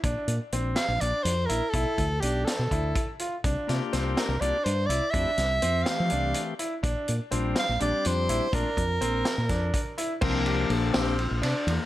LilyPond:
<<
  \new Staff \with { instrumentName = "Soprano saxophone" } { \time 7/8 \key bes \lydian \tempo 4 = 124 r4. f''8 d''8 c''8 bes'8 | a'4 g'8 a'4. r8 | r4. bes'8 d''8 c''8 d''8 | e''4. f''4. r8 |
r4. f''8 d''8 c''4 | bes'2. r8 | r2. r8 | }
  \new Staff \with { instrumentName = "Grand piano" } { \time 7/8 \key bes \lydian d'4 c'4 d'4 e'8 | e'4 d'4 e'4 f'8 | d'4 c'4 d'4 e'8 | d'4 c'4 d'4 e'8 |
d'4 c'4 d'4 e'8 | d'4 c'4 d'4 e'8 | c'8 g'4 c'4 d'4 | }
  \new Staff \with { instrumentName = "Tonewheel organ" } { \time 7/8 \key bes \lydian r2. r8 | r2. r8 | r8 <bes d' f' g'>4. <bes d' f' g'>8 r4 | <a c' e' g'>8 r4 <e a c' g'>4. r8 |
r4 <g c' d' f'>8 r8 <g c' d' g'>4. | <a c' d' f'>8 r2. | bes'4 a'8 g'8 f'8 d'8 bes8 | }
  \new Staff \with { instrumentName = "Tonewheel organ" } { \time 7/8 \key bes \lydian r2. r8 | r2. r8 | r2. r8 | r2. r8 |
r2. r8 | r2. r8 | <f bes d'>4. <f bes d'>8 r4. | }
  \new Staff \with { instrumentName = "Fingered electric bass" } { \clef bass \time 7/8 \key bes \lydian bes,,16 r16 bes,16 r16 bes,,8 r16 bes,,16 bes,,16 r16 f,8 bes,,16 r16 | b,,16 r16 d,8 b,,8 r16 b,16 d,8 r4 | c,16 r16 c16 r16 c,8 r16 c,16 c,16 r16 g,8 c,16 r16 | f,16 r16 c,8 f,8 r16 f16 c,8 r4 |
bes,,16 r16 bes,16 r16 bes,,8 r16 bes,,16 bes,,16 r16 f,8 bes,,16 r16 | bes,,16 r16 f,8 bes,,8 r16 bes,16 f,8 r4 | c,4 bes,,8 bes,,8. bes,,16 c16 r16 e,16 r16 | }
  \new DrumStaff \with { instrumentName = "Drums" } \drummode { \time 7/8 <hh bd>8 hh8 hh8 <hh sn>8 hh8 hh8 hh8 | <hh bd>8 <hh bd>8 hh8 <hh sn>8 <hh bd>8 <hh bd>8 hh8 | <hh bd>8 <hh sn>8 <hh sn>8 <hh sn>8 hh8 hh8 hh8 | <hh bd>8 <hh sn>8 hh8 <hh sn>8 hh8 hh8 hh8 |
<hh bd>8 hh8 hh8 <hh sn>8 hh8 hh8 hh8 | <hh bd>8 <hh bd>8 hh8 <hh sn>8 <hh bd sn>8 <hh bd>8 hh8 | <cymc bd>8 cymr8 cymr8 <cymr sn>8 cymr8 <cymr sn>8 cymr8 | }
>>